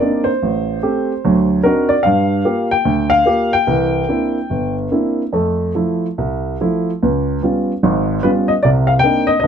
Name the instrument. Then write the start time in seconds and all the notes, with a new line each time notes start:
upright piano
Already playing: D5
0.01 A#3 C4 D4 D#4
0.24 C5
0.43 A1
0.83 A3 C4 G4
1.25 D2 F#3
1.64 C4 D4 D#4 F#4 A#4
1.89 D5
2.03 G2 G3 F5
2.45 A#3 F4 G4
2.71 G5
2.85 D2
3.10 F5
3.26 A#3 F4 G4
3.53 G5
3.67 C2 E3
4.09 A#3 C4 D4 E4
4.50 G1
4.92 A#3 C4 D4 E4
5.33 F2 A3
5.75 F3 A3 E4
6.18 C2
6.61 F3 A3 E4
7.03 C#2
7.42 G3 B3 C#4 F4
7.83 G#1 G#2
8.23 G3 B3 C#4 F4 B4
8.48 D#5
8.63 C2 C3 D5
8.87 F5
8.99 G5
9.03 A#3 C4 D4 D#4
9.27 D#5
9.40 G1 G2 D#5